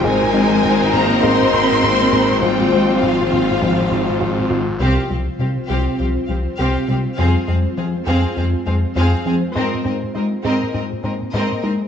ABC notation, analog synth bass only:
X:1
M:4/4
L:1/8
Q:1/4=101
K:Fm
V:1 name="Analog synth bass" clef=bass
A,, A, A,, A,, A,, A,, A,, A,, | A,, A, A,, A,, A,, A,, A,, A,, | C,, C,, C, C,, C,, C,, C,, C, | F,, F,, F, F,, F,, F,, F,, F, |
A,, A,, A, A,, A,, A,, A,, A, |]